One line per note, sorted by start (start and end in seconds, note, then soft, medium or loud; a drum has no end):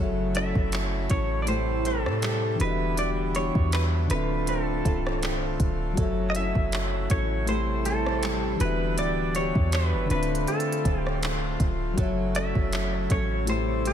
0.00 0.53 F#1 loud
0.00 1.46 C#3 medium
0.00 1.42 F#3 medium
0.00 1.46 F#3 medium
0.00 1.56 F#3 medium
0.00 2.58 A3 medium
0.00 4.06 E4 medium
0.00 1.43 F#4 medium
0.00 0.36 A4 medium
0.00 1.46 C#5 medium
0.00 1.47 E5 medium
0.04 1.48 A4 medium
0.35 1.09 C#4 medium
0.35 1.10 E4 medium
0.35 1.10 A4 medium
0.35 1.07 E5 loud
0.35 closed hi-hat medium
0.55 1.08 F#1 loud
0.55 kick medium
0.72 clap loud
0.72 closed hi-hat medium
1.10 2.07 A1 loud
1.10 1.56 C#4 medium
1.10 1.86 E4 medium
1.10 1.56 A4 medium
1.10 1.42 C#5 loud
1.10 kick medium
1.10 closed hi-hat medium
1.42 2.59 A3 medium
1.42 1.48 D5 medium
1.46 2.68 A2 medium
1.46 2.59 C3 medium
1.46 2.58 G3 medium
1.46 2.59 E4 medium
1.46 2.60 G4 medium
1.46 2.61 A4 medium
1.46 1.87 C5 loud
1.46 2.61 C5 medium
1.46 closed hi-hat medium
1.85 2.21 G3 medium
1.85 2.69 C4 medium
1.85 2.69 E4 medium
1.85 2.57 A4 loud
1.85 closed hi-hat medium
2.05 2.57 A2 medium
2.05 cross-stick medium
2.22 2.60 G3 medium
2.22 clap loud
2.22 closed hi-hat medium
2.55 4.05 E3 medium
2.55 4.06 D4 medium
2.60 3.52 E1 loud
2.60 4.08 D3 medium
2.60 2.96 E3 medium
2.60 4.09 G3 medium
2.60 4.09 B3 medium
2.60 4.07 F#4 medium
2.60 4.08 G4 medium
2.60 2.96 B4 medium
2.60 closed hi-hat medium
2.65 2.70 D#5 medium
2.71 4.13 E5 medium
2.97 4.18 E3 medium
2.97 3.35 G4 medium
2.97 3.09 D5 loud
2.97 closed hi-hat medium
3.35 4.18 B3 medium
3.35 4.18 D4 medium
3.35 4.19 G4 medium
3.35 3.73 C#5 medium
3.35 closed hi-hat medium
3.55 4.08 E2 loud
3.55 kick medium
3.72 3.83 B4 medium
3.72 clap loud
3.72 closed hi-hat medium
4.06 5.92 D3 medium
4.06 5.93 D4 medium
4.10 4.82 D1 loud
4.10 5.96 D3 medium
4.10 6.06 D3 medium
4.10 8.56 A3 medium
4.10 5.96 C4 medium
4.10 5.95 C4 medium
4.10 5.96 F4 medium
4.10 5.94 F4 medium
4.10 4.49 B4 medium
4.10 closed hi-hat medium
4.15 5.96 E5 medium
4.47 4.84 C4 medium
4.47 5.19 A4 medium
4.47 closed hi-hat medium
4.85 5.57 C1 loud
4.85 5.21 C4 medium
4.85 6.06 F4 medium
4.85 5.98 A4 medium
4.85 kick medium
4.85 closed hi-hat medium
5.07 cross-stick loud
5.23 6.06 C4 medium
5.23 clap loud
5.23 closed hi-hat medium
5.60 5.96 D1 loud
5.60 kick loud
5.60 closed hi-hat medium
5.93 7.42 F#3 medium
5.93 7.43 F#4 medium
5.97 6.53 F#1 loud
5.97 7.46 C#3 medium
5.97 7.56 F#3 medium
5.97 7.46 F#3 medium
5.97 7.46 E4 medium
5.97 7.45 A4 medium
5.97 6.36 A4 medium
5.97 7.46 C#5 medium
5.97 kick loud
5.97 closed hi-hat medium
6.03 7.47 E5 medium
6.30 6.36 D#5 medium
6.35 7.09 C#4 medium
6.35 7.10 E4 medium
6.35 7.10 A4 medium
6.35 7.11 E5 loud
6.35 closed hi-hat medium
6.55 7.08 F#1 loud
6.55 kick medium
6.72 clap loud
6.72 closed hi-hat medium
7.10 8.56 A1 loud
7.10 7.56 C#4 medium
7.10 7.86 E4 medium
7.10 7.56 A4 medium
7.10 7.48 C#5 loud
7.10 kick loud
7.10 closed hi-hat medium
7.46 8.68 A2 medium
7.46 8.59 C3 medium
7.46 10.08 G3 medium
7.46 8.59 A3 medium
7.46 8.60 E4 medium
7.46 10.08 E4 medium
7.46 8.60 G4 medium
7.46 8.61 A4 medium
7.46 7.87 C5 loud
7.46 closed hi-hat medium
7.50 8.62 C5 medium
7.85 8.22 G3 medium
7.85 8.68 C4 medium
7.85 8.69 E4 medium
7.85 8.63 A4 loud
7.85 closed hi-hat medium
8.06 cross-stick medium
8.23 8.60 G3 medium
8.23 clap loud
8.23 closed hi-hat medium
8.56 10.05 E3 medium
8.56 10.06 D4 medium
8.60 8.99 E1 loud
8.60 11.94 D3 medium
8.60 8.97 E3 medium
8.60 10.09 B3 medium
8.60 10.07 F#4 medium
8.60 10.09 G4 medium
8.60 8.95 B4 medium
8.60 closed hi-hat medium
8.65 10.10 E5 medium
8.98 9.52 D1 medium
8.98 10.18 E3 medium
8.98 9.35 G4 medium
8.98 9.35 D5 loud
8.98 closed hi-hat medium
9.35 10.18 B3 medium
9.35 10.19 D4 medium
9.35 10.19 G4 medium
9.35 9.70 C#5 medium
9.35 closed hi-hat medium
9.55 9.95 E2 loud
9.55 kick medium
9.72 10.10 B4 medium
9.72 clap loud
9.72 closed hi-hat medium
9.93 10.09 F#1 medium
10.06 11.92 D3 medium
10.06 11.93 D4 medium
10.10 10.46 D1 loud
10.10 12.06 D3 medium
10.10 13.93 A3 medium
10.10 11.96 C4 medium
10.10 11.95 C4 medium
10.10 11.94 F4 medium
10.10 11.96 F4 medium
10.10 10.49 B4 medium
10.10 closed hi-hat soft
10.15 11.96 E5 medium
10.23 closed hi-hat soft
10.35 closed hi-hat medium
10.47 10.84 C4 medium
10.47 11.00 A4 medium
10.47 closed hi-hat medium
10.60 closed hi-hat medium
10.72 closed hi-hat medium
10.85 11.57 D1 loud
10.85 11.22 C4 medium
10.85 12.06 F4 medium
10.85 11.98 A4 medium
10.85 kick medium
10.85 closed hi-hat medium
11.00 11.19 G4 medium
11.07 cross-stick medium
11.23 12.06 C4 medium
11.23 clap loud
11.23 closed hi-hat medium
11.60 11.96 D1 loud
11.60 kick loud
11.60 closed hi-hat medium
11.93 13.42 F#3 medium
11.93 13.44 F#4 medium
11.98 12.53 F#1 loud
11.98 13.46 C#3 medium
11.98 13.56 F#3 medium
11.98 13.46 F#3 medium
11.98 13.93 E4 medium
11.98 13.45 A4 medium
11.98 12.36 A4 medium
11.98 13.46 C#5 medium
11.98 kick loud
11.98 closed hi-hat medium
12.03 13.47 E5 medium
12.35 13.09 C#4 medium
12.35 13.10 E4 medium
12.35 13.10 A4 medium
12.35 13.11 E5 loud
12.35 closed hi-hat medium
12.55 13.08 F#1 medium
12.55 kick medium
12.73 clap loud
12.73 closed hi-hat medium
13.10 13.93 A1 loud
13.10 13.56 C#4 medium
13.10 13.86 E4 medium
13.10 13.56 A4 medium
13.10 13.46 C#5 loud
13.10 kick medium
13.10 closed hi-hat medium
13.45 13.93 A2 medium
13.45 13.93 C3 medium
13.45 13.93 G3 medium
13.45 13.93 A3 medium
13.45 13.93 E4 medium
13.45 13.93 G4 medium
13.45 13.93 A4 medium
13.45 closed hi-hat medium
13.50 13.87 C5 loud
13.50 13.93 C5 medium
13.85 13.93 G3 medium
13.85 13.93 C4 medium
13.85 13.93 E4 medium
13.85 13.93 A4 loud
13.85 closed hi-hat medium